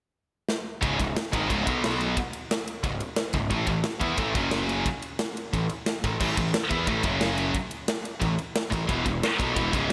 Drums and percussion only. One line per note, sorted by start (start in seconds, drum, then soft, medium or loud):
0.49 snare medium
0.83 kick loud
0.83 ride medium
1.00 kick medium
1.00 ride medium
1.16 snare loud
1.16 ride loud
1.33 kick loud
1.33 ride medium
1.50 kick loud
1.50 ride loud
1.67 kick loud
1.67 ride medium
1.84 snare loud
1.84 ride medium
2.01 ride medium
2.17 kick loud
2.17 ride loud
2.33 ride medium
2.51 snare loud
2.51 ride loud
2.68 ride medium
2.84 kick medium
2.84 ride loud
3.00 ride medium
3.16 snare loud
3.16 ride medium
3.33 kick medium
3.33 ride medium
3.50 kick loud
3.50 ride medium
3.67 kick medium
3.67 ride medium
3.84 snare loud
3.84 ride loud
4.01 kick loud
4.01 ride medium
4.17 kick loud
4.17 ride loud
4.35 kick loud
4.35 ride medium
4.51 snare loud
4.51 ride loud
4.69 ride medium
4.86 kick loud
4.86 ride loud
5.02 ride medium
5.19 snare loud
5.19 ride loud
5.37 ride medium
5.54 kick medium
5.54 ride loud
5.69 ride medium
5.86 snare loud
5.86 ride medium
6.04 kick medium
6.04 ride medium
6.20 kick loud
6.20 crash medium
6.37 kick medium
6.37 ride medium
6.54 snare loud
6.54 ride loud
6.70 kick loud
6.70 ride medium
6.87 kick loud
6.87 ride loud
7.03 kick loud
7.03 ride medium
7.21 snare loud
7.21 ride medium
7.38 ride medium
7.54 kick loud
7.54 ride loud
7.71 ride medium
7.88 snare loud
7.88 ride loud
8.05 ride medium
8.21 kick medium
8.21 ride loud
8.38 ride medium
8.55 snare loud
8.55 ride medium
8.72 kick medium
8.72 ride medium
8.89 kick loud
8.89 ride medium
9.06 kick medium
9.06 ride medium
9.23 snare loud
9.23 ride loud
9.40 kick loud
9.40 ride medium
9.56 kick loud
9.56 ride loud
9.73 kick loud
9.73 ride medium